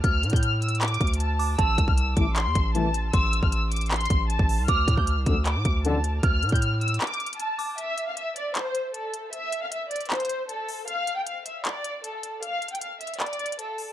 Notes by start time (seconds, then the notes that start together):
0.04 D2 F6, kick, closed hi-hat
0.23 A2, closed hi-hat
0.30 A2 G6, kick, closed hi-hat
0.36 closed hi-hat
0.42 F6, closed hi-hat
0.62 E6, closed hi-hat
0.68 closed hi-hat
0.75 closed hi-hat
0.81 D6, clap, closed hi-hat
0.88 closed hi-hat
0.94 closed hi-hat
1.01 D2, kick, closed hi-hat
1.07 closed hi-hat
1.14 closed hi-hat
1.20 A5, closed hi-hat
1.39 D6, open hi-hat
1.58 A1 A5 E6, kick, closed hi-hat
1.78 C2, kick, closed hi-hat
1.88 F6, kick
1.98 E6, closed hi-hat
2.17 A1 C2 A2 E3 D6, kick, closed hi-hat
2.36 C6, clap, closed hi-hat
2.46 E2
2.55 A1, kick, closed hi-hat
2.75 C2 A2 E3 A5, closed hi-hat
2.94 closed hi-hat
3.13 A1 C6 E6, kick, closed hi-hat
3.33 closed hi-hat
3.43 A1 F6, kick
3.52 E6, closed hi-hat
3.71 D6, closed hi-hat
3.76 closed hi-hat
3.81 closed hi-hat
3.86 closed hi-hat
3.91 C6, clap, closed hi-hat
3.96 closed hi-hat
4.01 closed hi-hat
4.05 closed hi-hat
4.10 A1, kick, closed hi-hat
4.30 A5, closed hi-hat
4.39 A1, kick
4.49 open hi-hat
4.59 C2
4.68 D2 D6 F6, kick, closed hi-hat
4.88 A2, kick, closed hi-hat
4.97 D2 G6, kick
5.07 F6, closed hi-hat
5.17 C2
5.26 A1 D2 F2 D3 E6, kick, closed hi-hat
5.45 D6, clap, closed hi-hat
5.56 A2
5.65 D2, kick, closed hi-hat
5.84 A1 F2 D3 A5, closed hi-hat
6.04 closed hi-hat
6.23 D2 F6, kick, closed hi-hat
6.43 A2, closed hi-hat
6.49 A2 G6, kick, closed hi-hat
6.56 closed hi-hat
6.62 F6, closed hi-hat
6.81 E6, closed hi-hat
6.88 closed hi-hat
6.94 closed hi-hat
7.01 D6, clap, closed hi-hat
7.07 closed hi-hat
7.14 closed hi-hat
7.20 closed hi-hat
7.26 closed hi-hat
7.33 closed hi-hat
7.39 A5, closed hi-hat
7.59 D6, open hi-hat
7.78 E5, closed hi-hat
7.98 closed hi-hat
8.07 F5
8.17 E5, closed hi-hat
8.36 D5, closed hi-hat
8.55 C5, clap, closed hi-hat
8.75 closed hi-hat
8.94 A4, closed hi-hat
9.14 closed hi-hat
9.33 E5, closed hi-hat
9.52 closed hi-hat
9.62 F5
9.71 E5, closed hi-hat
9.91 D5, closed hi-hat
9.96 closed hi-hat
10.01 closed hi-hat
10.05 closed hi-hat
10.10 C5, clap, closed hi-hat
10.15 closed hi-hat
10.20 closed hi-hat
10.25 closed hi-hat
10.29 closed hi-hat
10.49 A4, closed hi-hat
10.69 open hi-hat
10.88 F5, closed hi-hat
11.07 closed hi-hat
11.17 G5
11.26 F5, closed hi-hat
11.46 E5, closed hi-hat
11.65 D5, clap, closed hi-hat
11.84 closed hi-hat
12.03 A4, closed hi-hat
12.23 closed hi-hat
12.43 F5, closed hi-hat
12.62 closed hi-hat
12.68 G5, closed hi-hat
12.75 closed hi-hat
12.81 F5, closed hi-hat
13.01 E5, closed hi-hat
13.07 closed hi-hat
13.14 closed hi-hat
13.20 D5, clap, closed hi-hat
13.26 closed hi-hat
13.33 closed hi-hat
13.39 closed hi-hat
13.46 closed hi-hat
13.52 closed hi-hat
13.59 A4, closed hi-hat
13.78 open hi-hat